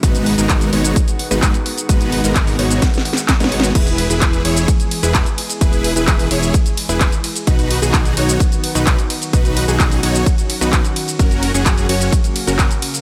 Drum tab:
CC |------------------------------------------------|------------------------------------------------|x-----------------------------------------------|------------------------------------------------|
RD |------------------------------------------------|------------------------------------------------|------x-----------x-----------x-----------x-----|------x-----------x-----------x-----------x-----|
HH |x--x--o--x--x--x--o--x--x--x--o--x--x--x--o--x--|x--x--o--x--x--o--o--x--x--x--o--x--x--x--o--x--|x--x--o--x--x--x--o--x--x--x--o--x--x--x--o--x--|x--x--o--x--x--o--o--x--x--x--o--x--x--x--o--x--|
SH |x--x-----x--x--x-----x--x--x-----x--x--x-----x--|x--x-----x--x--x-----x--x--x-----x--x--x-----x--|x--x-----x--x--x-----x--x--x-----x--x--x-----x--|x--x-----x--x--x-----x--x--x-----x--x--x-----x--|
CP |------------x-----------------------x-----------|------------x-----------------------x-----------|------------x-----------------------x-----------|------------x-----------------------x-----------|
SD |------------------------------------------------|------------------------o---o---o---o---o---o---|------------------------------------------------|------------------------------------------------|
BD |o-----------o-----------o-----------o-----------|o-----------o-----------o-----------o-----------|o-----------o-----------o-----------o-----------|o-----------o-----------o-----------o-----------|

CC |------------------------------------------------|------------------------------------------------|------------------------------------------------|
RD |------x-----------x-----------x-----------x-----|------x-----------x-----------x-----------x-----|------x-----------x-----------x-----------x-----|
HH |x--x--o--x--x--x--o--x--x--x--o--x--x--x--o--x--|x--x--o--x--x--o--o--x--x--x--o--x--x--x--o--x--|x--x--o--x--x--x--o--x--x--x--o--x--x--x--o--x--|
SH |x--x-----x--x--x-----x--x--x-----x--x--x-----x--|x--x-----x--x--x-----x--x--x-----x--x--x-----x--|x--x-----x--x--x-----x--x--x-----x--x--x-----x--|
CP |------------x-----------------------x-----------|------------x-----------------------x-----------|------------x-----------------------x-----------|
SD |------------------------------------------------|------------------------------------------------|------------------------------------------------|
BD |o-----------o-----------o-----------o-----------|o-----------o-----------o-----------o-----------|o-----------o-----------o-----------o-----------|